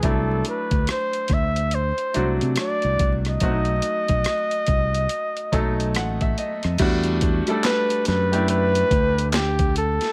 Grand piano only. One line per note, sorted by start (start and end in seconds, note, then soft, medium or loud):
0.03 1.38 F#3 medium
0.03 1.38 A3 medium
0.03 1.39 D4 medium
0.03 1.39 E4 medium
2.14 3.18 F#3 medium
2.14 3.18 A3 medium
2.14 3.19 D4 medium
2.14 3.19 F#4 medium
3.41 4.76 F#3 medium
3.41 4.77 A3 medium
3.41 3.50 C4 soft
3.41 4.77 F#4 medium
3.49 4.80 D#4 medium
5.52 6.56 F#3 medium
5.52 6.56 A3 medium
5.52 6.57 D#4 medium
5.52 6.57 A4 medium
5.52 5.92 A5 medium
5.96 6.20 F#5 medium
6.22 6.37 E5 medium
6.38 6.77 D#5 medium
6.79 7.31 G3 medium
6.79 7.31 A3 medium
6.79 7.32 D4 medium
6.79 7.32 F#4 medium
7.48 8.10 G3 medium
7.48 8.11 A3 medium
7.48 8.11 D4 medium
7.48 8.12 A4 medium
8.32 9.65 A3 medium
8.32 9.65 D4 medium
8.32 9.65 E4 medium
8.32 9.64 G4 medium